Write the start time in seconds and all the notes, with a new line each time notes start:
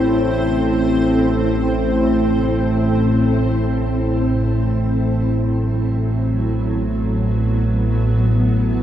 Already playing: A1 A2 C4 E4 A4 C5
4.76 F#3
5.69 B3
8.37 C#5